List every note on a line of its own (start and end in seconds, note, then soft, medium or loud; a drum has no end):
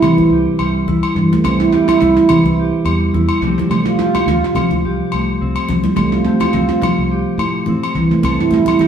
0.00 0.17 C3 medium
0.00 0.18 E3 medium
0.00 0.60 G3 medium
0.00 0.86 E4 medium
0.00 0.32 G4 medium
0.00 high conga medium
0.00 low agogo medium
0.05 1.16 C3 medium
0.17 0.29 A1 medium
0.17 high conga medium
0.30 0.45 C2 medium
0.30 1.74 G4 medium
0.59 0.86 C2 medium
0.59 1.73 G3 medium
0.59 low agogo medium
0.87 1.02 C2 medium
0.87 1.13 E4 medium
0.87 low conga medium
1.03 low agogo medium
1.15 1.31 G2 medium
1.15 1.31 E3 medium
1.15 muted clean electric guitar stroke medium
1.33 1.44 A3 medium
1.33 high conga medium
1.44 1.71 C2 medium
1.44 1.59 C4 medium
1.44 low conga medium
1.44 low agogo medium
1.60 1.71 E4 medium
1.72 2.87 G3 medium
1.72 1.87 E4 medium
1.72 2.59 G4 medium
1.88 1.99 E4 medium
1.88 high conga medium
1.88 low agogo medium
2.01 2.16 C2 loud
2.01 2.15 E4 medium
2.01 3.13 E4 medium
2.01 low conga medium
2.17 2.29 E4 medium
2.29 3.42 C3 medium
2.29 2.43 C3 loud
2.29 2.44 E3 medium
2.29 high conga medium
2.29 low agogo medium
2.43 2.71 C2 medium
2.43 high conga medium
2.60 3.45 G4 medium
2.85 3.12 E2 loud
2.85 3.43 G3 medium
2.85 low agogo medium
3.14 3.29 E2 medium
3.14 3.40 E4 medium
3.14 low conga medium
3.29 low agogo medium
3.41 3.56 C2 loud
3.41 4.57 C3 medium
3.41 3.57 F3 medium
3.41 4.00 A3 medium
3.41 4.29 C4 medium
3.45 4.01 G4 medium
3.45 muted clean electric guitar stroke medium
3.58 3.70 G3 medium
3.58 high conga medium
3.70 3.97 C3 medium
3.70 3.86 A3 medium
3.70 low conga medium
3.70 low agogo medium
3.86 3.98 F4 medium
3.99 5.12 A3 medium
3.99 4.13 F4 medium
3.99 4.85 G4 medium
4.15 4.27 F4 medium
4.15 high conga medium
4.15 low agogo medium
4.26 4.41 D2 medium
4.26 4.42 F4 medium
4.26 muted clean electric guitar stroke medium
4.26 low conga medium
4.44 4.56 F4 medium
4.54 4.69 C3 medium
4.54 5.69 C3 medium
4.54 4.71 F3 medium
4.54 high conga medium
4.54 low agogo medium
4.70 4.83 D2 medium
4.70 high conga medium
4.85 4.99 C2 medium
4.85 6.26 G4 medium
5.12 5.39 C2 medium
5.12 6.25 A3 medium
5.12 low agogo medium
5.41 5.56 C2 medium
5.41 6.53 C4 medium
5.56 low agogo medium
5.68 5.84 C2 medium
5.68 5.84 F3 medium
5.68 muted clean electric guitar stroke medium
5.68 low conga medium
5.84 5.96 G3 medium
5.84 high conga medium
5.96 6.24 C2 loud
5.96 6.11 A3 medium
5.96 high conga medium
5.96 low conga medium
5.96 low agogo medium
6.12 6.24 F4 medium
6.25 7.39 A3 medium
6.25 6.39 C4 medium
6.25 7.10 G4 medium
6.40 6.52 F4 medium
6.40 high conga medium
6.40 low agogo medium
6.53 6.68 C2 loud
6.53 7.67 C4 medium
6.53 6.68 F4 medium
6.53 low conga medium
6.69 6.81 F4 medium
6.82 6.96 C3 loud
6.82 7.93 C3 medium
6.82 6.96 F3 medium
6.82 high conga medium
6.82 low agogo medium
6.98 7.24 C2 medium
7.12 7.93 G4 medium
7.37 7.65 A2 medium
7.37 7.93 A3 medium
7.37 low agogo medium
7.66 7.81 A2 medium
7.66 8.88 C4 medium
7.66 low conga medium
7.83 low agogo medium
7.95 8.09 C2 medium
7.95 8.88 C3 medium
7.95 8.10 E3 medium
8.11 8.23 A3 medium
8.23 8.38 C2 medium
8.23 8.38 C4 medium
8.23 8.88 A4 medium
8.23 high conga medium
8.23 low conga medium
8.23 low agogo medium
8.39 8.51 G2 medium
8.39 8.52 E4 medium
8.51 8.88 A2 medium
8.51 8.88 G3 medium
8.51 8.67 E4 medium
8.51 high conga medium
8.66 8.80 E4 medium
8.66 high conga medium
8.66 low agogo medium
8.79 8.88 E4 medium
8.79 8.88 G4 medium
8.79 low conga medium